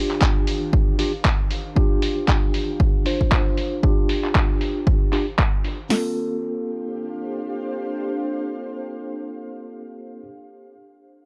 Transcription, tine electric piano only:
0.00 0.96 D4 loud
0.00 0.96 F4 medium
0.00 0.97 G4 loud
0.99 1.11 D4 medium
0.99 1.11 F4 medium
0.99 1.11 G4 loud
1.76 3.03 D4 loud
1.76 3.03 F4 medium
1.76 3.04 G4 loud
3.05 3.80 D4 medium
3.05 3.81 F4 medium
3.05 3.81 C5 medium
3.83 5.10 D4 medium
3.83 5.10 F4 medium
3.83 5.10 G4 loud
5.12 5.25 D4 medium
5.12 5.25 F4 medium
5.12 5.25 G4 loud
5.89 10.21 A#3 medium
5.89 10.22 C4 medium
5.89 10.23 F4 medium
5.89 10.23 A4 medium

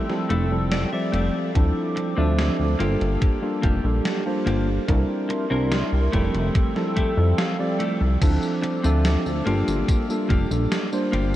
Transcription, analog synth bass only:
0.30 0.85 F1 loud
1.13 1.30 F1 medium
1.55 1.71 D2 loud
2.18 2.50 D2 loud
2.59 2.75 D2 medium
2.80 2.96 G1 medium
3.01 3.17 G1 loud
3.63 3.80 F1 medium
3.84 4.00 A#1 medium
4.47 4.79 G1 medium
4.89 5.05 C2 loud
5.51 5.83 C2 loud
5.93 6.09 C2 medium
6.13 6.30 F1 medium
6.34 6.50 F1 loud
7.17 7.34 F2 loud
8.01 8.17 C2 loud
8.22 8.38 D2 loud
8.85 9.17 D2 loud
9.26 9.42 D2 loud
9.46 9.63 G1 medium
9.68 9.84 G1 loud
10.30 10.46 F1 medium
10.51 10.67 A#1 medium
11.13 11.36 G1 medium

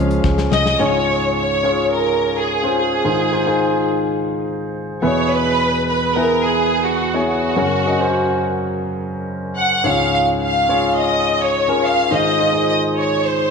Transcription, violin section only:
0.52 0.78 D#5 medium
0.80 1.36 C#5 medium
1.37 1.90 C#5 medium
1.95 2.33 A#4 medium
2.36 2.78 G#4 medium
2.80 3.88 G#4 medium
5.04 5.30 C#5 medium
5.32 5.88 B4 medium
5.89 6.15 B4 medium
6.15 6.44 A#4 medium
6.45 6.87 G#4 medium
6.86 7.28 F#4 medium
7.29 8.39 F#4 medium
9.58 9.84 F#5 medium
9.87 10.14 F5 medium
10.15 10.27 F5 medium
10.43 10.95 F5 medium
10.99 11.41 D#5 medium
11.42 11.84 C#5 medium
11.84 12.12 F5 medium
12.13 12.68 D#5 medium
12.69 12.82 D#5 medium
12.98 13.24 C#5 medium
13.25 13.51 C5 medium

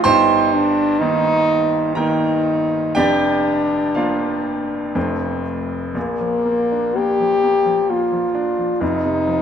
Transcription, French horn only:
0.04 0.55 D#4 medium
0.53 1.01 D4 medium
0.99 1.95 D#4 loud
1.96 2.97 D#4 medium
2.96 5.45 D4 medium
5.94 6.97 A#3 medium
6.96 7.91 G4 loud
7.89 8.83 F4 medium
8.81 9.42 D#4 medium

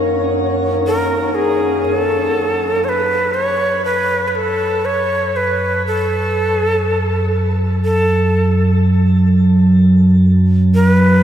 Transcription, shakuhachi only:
0.87 1.36 A#4 medium
1.35 1.85 G#4 medium
1.85 1.98 G#4 medium
1.98 2.86 A4 medium
2.84 2.90 C#5 medium
2.89 3.36 B4 medium
3.34 3.85 C#5 medium
3.85 4.28 B4 medium
4.28 4.37 B4 medium
4.35 4.87 A4 medium
4.85 5.38 C#5 medium
5.36 5.85 B4 medium
5.87 7.52 A4 medium
7.85 8.77 A4 medium
10.75 10.89 A#4 medium
10.89 11.23 B4 medium

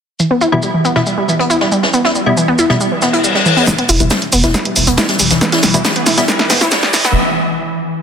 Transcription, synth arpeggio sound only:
0.20 0.25 E3 medium
0.31 0.35 B3 loud
0.41 0.44 E4 loud
0.52 0.57 G3 medium
0.63 0.70 G3 medium
0.74 0.79 E3 medium
0.85 0.90 B3 loud
0.96 0.99 E4 loud
1.06 1.11 G3 medium
1.18 1.25 G3 medium
1.28 1.33 E3 medium
1.39 1.44 B3 loud
1.50 1.53 E4 loud
1.61 1.66 G3 medium
1.72 1.79 G3 medium
1.83 1.88 E3 medium
1.94 1.98 B3 loud
2.05 2.07 E4 loud
2.15 2.20 G3 medium
2.26 2.33 G3 medium
2.37 2.42 E3 medium
2.48 2.53 B3 loud
2.59 2.62 E4 loud
2.70 2.75 G3 medium
2.80 2.88 G3 medium
2.92 2.96 E3 medium
3.02 3.07 B3 loud
3.13 3.16 E4 loud
3.24 3.29 G3 medium
3.35 3.42 G3 medium
3.46 3.51 E3 medium
3.57 3.61 B3 loud
3.67 3.72 E3 medium
3.78 3.83 B3 loud
3.89 3.92 E4 loud
4.00 4.05 G3 medium
4.11 4.18 G3 medium
4.22 4.27 E3 medium
4.33 4.38 B3 loud
4.44 4.47 E4 loud
4.54 4.59 G3 medium
4.65 4.73 G3 medium
4.76 4.81 E3 medium
4.87 4.92 B3 loud
4.98 5.01 E4 loud
5.09 5.14 G3 medium
5.20 5.27 G3 medium
5.31 5.35 E3 medium
5.41 5.46 B3 loud
5.53 5.55 E4 loud
5.63 5.68 G3 medium
5.74 5.81 G3 medium
5.85 5.90 E3 medium
5.96 6.01 B3 loud
6.07 6.10 E4 loud
6.18 6.22 G3 medium
6.28 6.36 G3 medium
6.39 6.44 E3 medium
6.50 6.55 B3 loud
6.61 6.64 E4 loud
6.72 6.77 G3 medium
6.83 6.90 G3 medium
6.94 6.98 E3 medium
7.05 7.09 B3 loud

